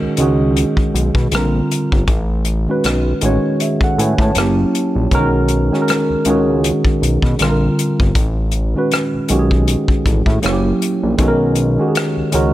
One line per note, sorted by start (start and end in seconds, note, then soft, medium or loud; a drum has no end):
0.00 0.08 C#2 soft
0.00 0.17 D#3 medium
0.00 0.18 G#3 medium
0.00 0.20 C#4 medium
0.00 0.20 F#4 medium
0.00 0.16 G#4 medium
0.00 1.33 A#4 medium
0.17 0.65 C#2 medium
0.17 1.31 D#3 medium
0.17 1.32 G#3 medium
0.17 1.32 C#4 medium
0.17 1.33 F#4 medium
0.17 closed hi-hat medium
0.22 1.33 G#4 medium
0.56 closed hi-hat medium
0.77 kick medium
0.94 1.11 B1 medium
0.94 closed hi-hat medium
1.15 1.28 B2 medium
1.15 kick medium
1.15 cross-stick soft
1.31 1.62 A#1 medium
1.31 1.39 C#3 medium
1.31 2.04 G3 medium
1.31 2.05 C4 medium
1.31 2.05 F4 medium
1.31 cross-stick medium
1.31 closed hi-hat medium
1.36 2.07 D3 medium
1.36 2.06 A#4 medium
1.71 closed hi-hat medium
1.92 2.05 G1 medium
1.92 kick medium
2.07 2.67 A1 loud
2.07 kick medium
2.07 closed hi-hat medium
2.45 closed hi-hat medium
2.67 3.18 D#3 medium
2.67 3.19 G#3 medium
2.67 3.19 C#4 medium
2.67 3.20 F#4 medium
2.67 3.20 B4 medium
2.84 3.14 B1 medium
2.84 cross-stick loud
2.84 closed hi-hat medium
3.21 3.39 A1 medium
3.21 4.35 D#3 medium
3.21 4.36 G#3 medium
3.21 4.36 C#4 medium
3.21 4.37 F#4 medium
3.21 closed hi-hat medium
3.26 3.61 C#5 medium
3.60 3.81 G#4 soft
3.60 3.81 E5 medium
3.60 closed hi-hat medium
3.81 3.98 A4 medium
3.81 3.98 F#5 medium
3.81 kick medium
3.98 4.15 A2 medium
3.98 4.19 B4 medium
3.98 4.19 G#5 medium
3.98 closed hi-hat medium
4.18 4.32 A2 medium
4.18 4.57 C#5 medium
4.18 4.56 A5 medium
4.18 kick medium
4.18 cross-stick soft
4.35 4.65 F#1 medium
4.35 5.07 F#3 medium
4.35 5.08 A#3 medium
4.35 5.08 C#4 medium
4.35 5.09 E4 medium
4.35 cross-stick loud
4.35 closed hi-hat medium
4.39 5.09 G4 medium
4.75 closed hi-hat medium
4.96 5.08 A#1 medium
5.11 5.71 B1 medium
5.11 5.18 D3 medium
5.11 5.67 G#3 medium
5.11 5.68 C#4 medium
5.11 5.68 F#4 medium
5.11 5.69 A#4 loud
5.11 kick medium
5.11 closed hi-hat medium
5.17 5.70 D#3 loud
5.48 closed hi-hat soft
5.71 6.22 D#3 medium
5.71 6.23 G#3 medium
5.71 6.23 C#4 medium
5.71 6.24 F#4 medium
5.71 cross-stick soft
5.75 5.79 G#4 medium
5.82 6.28 A#4 medium
5.88 cross-stick medium
5.88 closed hi-hat medium
6.10 6.16 C#2 soft
6.25 6.72 C#2 medium
6.25 7.39 D#3 medium
6.25 7.40 G#3 medium
6.25 7.40 C#4 medium
6.25 7.41 F#4 medium
6.25 closed hi-hat medium
6.30 7.41 G#4 medium
6.64 closed hi-hat medium
6.85 kick medium
7.02 7.19 B1 medium
7.02 closed hi-hat medium
7.22 7.36 B2 medium
7.22 kick medium
7.22 cross-stick soft
7.39 7.69 A#1 medium
7.39 8.11 D3 medium
7.39 8.11 G3 medium
7.39 8.12 C4 medium
7.39 8.12 F4 medium
7.39 cross-stick loud
7.39 closed hi-hat medium
7.43 7.48 A4 medium
7.50 8.16 A#4 medium
7.79 closed hi-hat medium
8.00 8.12 G1 medium
8.00 kick medium
8.15 8.75 A1 loud
8.15 kick loud
8.15 closed hi-hat medium
8.51 closed hi-hat soft
8.74 9.26 D#3 medium
8.74 9.26 G#3 medium
8.74 9.27 C#4 medium
8.74 9.27 F#4 medium
8.78 9.28 B4 medium
8.91 cross-stick medium
8.91 closed hi-hat medium
9.13 9.20 B1 soft
9.28 9.76 B1 medium
9.28 10.43 D#3 medium
9.28 10.43 G#3 medium
9.28 10.43 C#4 medium
9.28 10.44 F#4 medium
9.28 closed hi-hat medium
9.32 9.38 G4 medium
9.39 10.48 G#4 medium
9.51 kick medium
9.68 closed hi-hat medium
9.88 kick medium
10.06 10.23 A1 medium
10.06 kick medium
10.06 closed hi-hat medium
10.26 10.39 A2 medium
10.26 kick medium
10.26 cross-stick soft
10.42 10.73 F#1 medium
10.42 11.14 F#3 medium
10.42 11.15 A#3 medium
10.42 11.15 C#4 medium
10.42 11.16 E4 medium
10.42 cross-stick loud
10.42 closed hi-hat medium
10.46 10.52 F#4 medium
10.53 11.20 G4 medium
10.82 closed hi-hat medium
11.03 11.16 A#1 medium
11.17 11.78 B1 medium
11.17 11.74 D#3 medium
11.17 11.74 G#3 medium
11.17 11.75 C#4 medium
11.17 11.75 F#4 medium
11.17 kick medium
11.17 closed hi-hat medium
11.21 11.28 A4 medium
11.28 11.79 A#4 medium
11.55 closed hi-hat soft
11.77 12.29 D#3 medium
11.77 12.30 G#3 medium
11.77 12.30 C#4 medium
11.77 12.31 F#4 medium
11.82 11.86 G4 medium
11.88 12.34 G#4 medium
11.95 cross-stick medium
11.95 closed hi-hat medium
12.17 12.23 C#2 soft
12.31 12.54 C#2 medium
12.31 12.54 D#3 medium
12.31 12.54 G#3 medium
12.31 12.54 C#4 medium
12.31 12.54 F#4 medium
12.31 12.54 A#4 medium
12.31 closed hi-hat medium